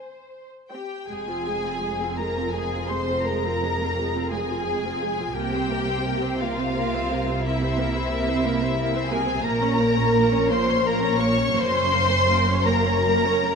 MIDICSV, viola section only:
0, 0, Header, 1, 2, 480
1, 0, Start_track
1, 0, Tempo, 797872
1, 658, Time_signature, 12, 3, 24, 8
1, 658, Tempo, 717703
1, 2578, Tempo, 696056
1, 4978, Tempo, 673401
1, 6898, Tempo, 717703
1, 8338, Tempo, 769231
1, 9123, End_track
2, 0, Start_track
2, 0, Title_t, "Viola section"
2, 0, Program_c, 0, 48
2, 420, Note_on_c, 0, 72, 30
2, 422, Note_on_c, 0, 60, 30
2, 598, Note_off_c, 0, 72, 0
2, 599, Note_off_c, 0, 60, 0
2, 653, Note_on_c, 0, 68, 39
2, 655, Note_on_c, 0, 56, 41
2, 770, Note_off_c, 0, 68, 0
2, 771, Note_off_c, 0, 56, 0
2, 776, Note_on_c, 0, 65, 34
2, 777, Note_on_c, 0, 60, 36
2, 900, Note_off_c, 0, 65, 0
2, 901, Note_off_c, 0, 60, 0
2, 907, Note_on_c, 0, 68, 34
2, 909, Note_on_c, 0, 56, 36
2, 1025, Note_off_c, 0, 68, 0
2, 1025, Note_on_c, 0, 60, 36
2, 1026, Note_off_c, 0, 56, 0
2, 1028, Note_on_c, 0, 65, 34
2, 1143, Note_off_c, 0, 60, 0
2, 1145, Note_off_c, 0, 65, 0
2, 1147, Note_on_c, 0, 56, 38
2, 1148, Note_on_c, 0, 68, 36
2, 1255, Note_off_c, 0, 56, 0
2, 1256, Note_off_c, 0, 68, 0
2, 1268, Note_on_c, 0, 65, 37
2, 1269, Note_on_c, 0, 60, 39
2, 1384, Note_off_c, 0, 65, 0
2, 1385, Note_off_c, 0, 60, 0
2, 1394, Note_on_c, 0, 56, 39
2, 1396, Note_on_c, 0, 68, 36
2, 1508, Note_off_c, 0, 56, 0
2, 1509, Note_off_c, 0, 68, 0
2, 1510, Note_on_c, 0, 60, 36
2, 1510, Note_on_c, 0, 65, 32
2, 1627, Note_off_c, 0, 65, 0
2, 1628, Note_off_c, 0, 60, 0
2, 1630, Note_on_c, 0, 56, 40
2, 1635, Note_on_c, 0, 68, 37
2, 1740, Note_off_c, 0, 56, 0
2, 1742, Note_off_c, 0, 68, 0
2, 1755, Note_on_c, 0, 65, 40
2, 1759, Note_on_c, 0, 60, 39
2, 1867, Note_on_c, 0, 56, 36
2, 1868, Note_on_c, 0, 68, 36
2, 1869, Note_off_c, 0, 65, 0
2, 1872, Note_off_c, 0, 60, 0
2, 1984, Note_off_c, 0, 56, 0
2, 1985, Note_off_c, 0, 68, 0
2, 1992, Note_on_c, 0, 60, 40
2, 1993, Note_on_c, 0, 65, 38
2, 2105, Note_off_c, 0, 60, 0
2, 2105, Note_on_c, 0, 56, 42
2, 2106, Note_off_c, 0, 65, 0
2, 2111, Note_on_c, 0, 68, 42
2, 2213, Note_off_c, 0, 56, 0
2, 2216, Note_off_c, 0, 68, 0
2, 2234, Note_on_c, 0, 60, 37
2, 2235, Note_on_c, 0, 65, 38
2, 2346, Note_off_c, 0, 60, 0
2, 2346, Note_off_c, 0, 65, 0
2, 2361, Note_on_c, 0, 56, 37
2, 2364, Note_on_c, 0, 68, 40
2, 2470, Note_off_c, 0, 56, 0
2, 2471, Note_off_c, 0, 68, 0
2, 2476, Note_on_c, 0, 65, 40
2, 2480, Note_on_c, 0, 60, 41
2, 2587, Note_off_c, 0, 65, 0
2, 2589, Note_off_c, 0, 60, 0
2, 2599, Note_on_c, 0, 56, 43
2, 2602, Note_on_c, 0, 68, 44
2, 2702, Note_off_c, 0, 56, 0
2, 2704, Note_off_c, 0, 68, 0
2, 2714, Note_on_c, 0, 60, 40
2, 2715, Note_on_c, 0, 65, 40
2, 2826, Note_off_c, 0, 60, 0
2, 2826, Note_off_c, 0, 65, 0
2, 2835, Note_on_c, 0, 56, 41
2, 2838, Note_on_c, 0, 68, 44
2, 2943, Note_off_c, 0, 56, 0
2, 2945, Note_off_c, 0, 68, 0
2, 2947, Note_on_c, 0, 65, 44
2, 2950, Note_on_c, 0, 60, 44
2, 3057, Note_off_c, 0, 65, 0
2, 3058, Note_off_c, 0, 60, 0
2, 3065, Note_on_c, 0, 68, 44
2, 3069, Note_on_c, 0, 56, 44
2, 3166, Note_off_c, 0, 68, 0
2, 3168, Note_off_c, 0, 56, 0
2, 3185, Note_on_c, 0, 60, 42
2, 3187, Note_on_c, 0, 65, 40
2, 3294, Note_off_c, 0, 60, 0
2, 3295, Note_off_c, 0, 65, 0
2, 3301, Note_on_c, 0, 68, 41
2, 3302, Note_on_c, 0, 56, 43
2, 3413, Note_off_c, 0, 56, 0
2, 3413, Note_off_c, 0, 68, 0
2, 3422, Note_on_c, 0, 60, 38
2, 3422, Note_on_c, 0, 65, 41
2, 3535, Note_off_c, 0, 60, 0
2, 3535, Note_off_c, 0, 65, 0
2, 3537, Note_on_c, 0, 58, 46
2, 3537, Note_on_c, 0, 70, 47
2, 3646, Note_off_c, 0, 70, 0
2, 3647, Note_off_c, 0, 58, 0
2, 3661, Note_on_c, 0, 60, 43
2, 3663, Note_on_c, 0, 72, 42
2, 3772, Note_on_c, 0, 70, 41
2, 3774, Note_on_c, 0, 58, 41
2, 3777, Note_off_c, 0, 60, 0
2, 3779, Note_off_c, 0, 72, 0
2, 3894, Note_off_c, 0, 58, 0
2, 3894, Note_off_c, 0, 70, 0
2, 3903, Note_on_c, 0, 72, 42
2, 3905, Note_on_c, 0, 60, 42
2, 4019, Note_off_c, 0, 72, 0
2, 4020, Note_off_c, 0, 60, 0
2, 4023, Note_on_c, 0, 58, 41
2, 4023, Note_on_c, 0, 70, 43
2, 4132, Note_off_c, 0, 58, 0
2, 4132, Note_off_c, 0, 70, 0
2, 4134, Note_on_c, 0, 72, 43
2, 4137, Note_on_c, 0, 60, 43
2, 4256, Note_off_c, 0, 72, 0
2, 4258, Note_off_c, 0, 60, 0
2, 4261, Note_on_c, 0, 70, 44
2, 4263, Note_on_c, 0, 58, 45
2, 4381, Note_off_c, 0, 70, 0
2, 4381, Note_on_c, 0, 72, 39
2, 4382, Note_off_c, 0, 58, 0
2, 4382, Note_on_c, 0, 60, 41
2, 4499, Note_on_c, 0, 58, 45
2, 4502, Note_off_c, 0, 60, 0
2, 4502, Note_off_c, 0, 72, 0
2, 4503, Note_on_c, 0, 70, 46
2, 4612, Note_off_c, 0, 58, 0
2, 4614, Note_off_c, 0, 70, 0
2, 4627, Note_on_c, 0, 60, 51
2, 4627, Note_on_c, 0, 72, 46
2, 4744, Note_off_c, 0, 60, 0
2, 4744, Note_off_c, 0, 72, 0
2, 4747, Note_on_c, 0, 58, 45
2, 4748, Note_on_c, 0, 70, 43
2, 4863, Note_off_c, 0, 58, 0
2, 4863, Note_off_c, 0, 70, 0
2, 4864, Note_on_c, 0, 72, 46
2, 4869, Note_on_c, 0, 60, 47
2, 4980, Note_off_c, 0, 72, 0
2, 4980, Note_on_c, 0, 70, 46
2, 4983, Note_off_c, 0, 60, 0
2, 4986, Note_on_c, 0, 58, 49
2, 5092, Note_off_c, 0, 70, 0
2, 5095, Note_off_c, 0, 58, 0
2, 5107, Note_on_c, 0, 72, 45
2, 5112, Note_on_c, 0, 60, 47
2, 5222, Note_on_c, 0, 58, 47
2, 5223, Note_off_c, 0, 72, 0
2, 5223, Note_on_c, 0, 70, 46
2, 5225, Note_off_c, 0, 60, 0
2, 5340, Note_off_c, 0, 58, 0
2, 5340, Note_off_c, 0, 70, 0
2, 5343, Note_on_c, 0, 60, 47
2, 5343, Note_on_c, 0, 72, 49
2, 5457, Note_on_c, 0, 70, 53
2, 5458, Note_off_c, 0, 72, 0
2, 5458, Note_on_c, 0, 58, 47
2, 5459, Note_off_c, 0, 60, 0
2, 5566, Note_off_c, 0, 58, 0
2, 5566, Note_off_c, 0, 70, 0
2, 5578, Note_on_c, 0, 60, 52
2, 5579, Note_on_c, 0, 72, 51
2, 5692, Note_on_c, 0, 58, 57
2, 5693, Note_off_c, 0, 60, 0
2, 5693, Note_off_c, 0, 72, 0
2, 5694, Note_on_c, 0, 70, 53
2, 5809, Note_off_c, 0, 58, 0
2, 5810, Note_off_c, 0, 70, 0
2, 5818, Note_on_c, 0, 72, 50
2, 5820, Note_on_c, 0, 60, 53
2, 5930, Note_on_c, 0, 70, 54
2, 5931, Note_off_c, 0, 72, 0
2, 5932, Note_off_c, 0, 60, 0
2, 5934, Note_on_c, 0, 58, 53
2, 6038, Note_off_c, 0, 70, 0
2, 6040, Note_off_c, 0, 58, 0
2, 6042, Note_on_c, 0, 72, 57
2, 6045, Note_on_c, 0, 60, 50
2, 6163, Note_off_c, 0, 72, 0
2, 6164, Note_off_c, 0, 60, 0
2, 6167, Note_on_c, 0, 58, 49
2, 6168, Note_on_c, 0, 70, 52
2, 6285, Note_on_c, 0, 60, 48
2, 6286, Note_off_c, 0, 58, 0
2, 6286, Note_off_c, 0, 70, 0
2, 6288, Note_on_c, 0, 72, 46
2, 6401, Note_on_c, 0, 70, 59
2, 6405, Note_on_c, 0, 58, 59
2, 6406, Note_off_c, 0, 60, 0
2, 6407, Note_off_c, 0, 72, 0
2, 6517, Note_off_c, 0, 70, 0
2, 6519, Note_off_c, 0, 58, 0
2, 6520, Note_on_c, 0, 73, 51
2, 6525, Note_on_c, 0, 61, 54
2, 6646, Note_on_c, 0, 58, 48
2, 6647, Note_off_c, 0, 73, 0
2, 6647, Note_on_c, 0, 70, 52
2, 6650, Note_off_c, 0, 61, 0
2, 6772, Note_off_c, 0, 58, 0
2, 6772, Note_off_c, 0, 70, 0
2, 6772, Note_on_c, 0, 73, 52
2, 6773, Note_on_c, 0, 61, 53
2, 6897, Note_off_c, 0, 61, 0
2, 6897, Note_off_c, 0, 73, 0
2, 6897, Note_on_c, 0, 58, 54
2, 6897, Note_on_c, 0, 70, 52
2, 7006, Note_off_c, 0, 58, 0
2, 7006, Note_off_c, 0, 70, 0
2, 7016, Note_on_c, 0, 73, 49
2, 7018, Note_on_c, 0, 61, 56
2, 7134, Note_off_c, 0, 73, 0
2, 7135, Note_off_c, 0, 61, 0
2, 7144, Note_on_c, 0, 58, 54
2, 7145, Note_on_c, 0, 70, 54
2, 7258, Note_off_c, 0, 58, 0
2, 7258, Note_off_c, 0, 70, 0
2, 7260, Note_on_c, 0, 73, 51
2, 7263, Note_on_c, 0, 61, 52
2, 7376, Note_off_c, 0, 73, 0
2, 7377, Note_on_c, 0, 58, 54
2, 7378, Note_off_c, 0, 61, 0
2, 7378, Note_on_c, 0, 70, 56
2, 7486, Note_off_c, 0, 58, 0
2, 7487, Note_off_c, 0, 70, 0
2, 7490, Note_on_c, 0, 61, 56
2, 7490, Note_on_c, 0, 73, 58
2, 7606, Note_on_c, 0, 70, 51
2, 7609, Note_on_c, 0, 58, 53
2, 7610, Note_off_c, 0, 61, 0
2, 7610, Note_off_c, 0, 73, 0
2, 7727, Note_off_c, 0, 70, 0
2, 7727, Note_on_c, 0, 73, 55
2, 7729, Note_off_c, 0, 58, 0
2, 7729, Note_on_c, 0, 61, 50
2, 7844, Note_on_c, 0, 58, 53
2, 7848, Note_off_c, 0, 73, 0
2, 7848, Note_on_c, 0, 70, 55
2, 7849, Note_off_c, 0, 61, 0
2, 7959, Note_off_c, 0, 58, 0
2, 7961, Note_off_c, 0, 70, 0
2, 7961, Note_on_c, 0, 61, 54
2, 7961, Note_on_c, 0, 73, 54
2, 8087, Note_off_c, 0, 61, 0
2, 8087, Note_off_c, 0, 73, 0
2, 8095, Note_on_c, 0, 58, 51
2, 8097, Note_on_c, 0, 70, 55
2, 8211, Note_on_c, 0, 61, 57
2, 8212, Note_on_c, 0, 73, 53
2, 8216, Note_off_c, 0, 58, 0
2, 8217, Note_off_c, 0, 70, 0
2, 8333, Note_on_c, 0, 58, 51
2, 8336, Note_off_c, 0, 61, 0
2, 8337, Note_off_c, 0, 73, 0
2, 8337, Note_on_c, 0, 70, 54
2, 8444, Note_off_c, 0, 58, 0
2, 8445, Note_off_c, 0, 70, 0
2, 8455, Note_on_c, 0, 61, 53
2, 8457, Note_on_c, 0, 73, 57
2, 8571, Note_on_c, 0, 58, 59
2, 8571, Note_on_c, 0, 70, 57
2, 8572, Note_off_c, 0, 61, 0
2, 8573, Note_off_c, 0, 73, 0
2, 8687, Note_on_c, 0, 61, 55
2, 8687, Note_on_c, 0, 73, 51
2, 8691, Note_off_c, 0, 58, 0
2, 8691, Note_off_c, 0, 70, 0
2, 8810, Note_off_c, 0, 61, 0
2, 8810, Note_off_c, 0, 73, 0
2, 8817, Note_on_c, 0, 58, 54
2, 8818, Note_on_c, 0, 70, 54
2, 8928, Note_off_c, 0, 58, 0
2, 8928, Note_off_c, 0, 70, 0
2, 8934, Note_on_c, 0, 61, 50
2, 8934, Note_on_c, 0, 73, 51
2, 9056, Note_off_c, 0, 61, 0
2, 9056, Note_off_c, 0, 73, 0
2, 9057, Note_on_c, 0, 70, 51
2, 9060, Note_on_c, 0, 58, 50
2, 9123, Note_off_c, 0, 58, 0
2, 9123, Note_off_c, 0, 70, 0
2, 9123, End_track
0, 0, End_of_file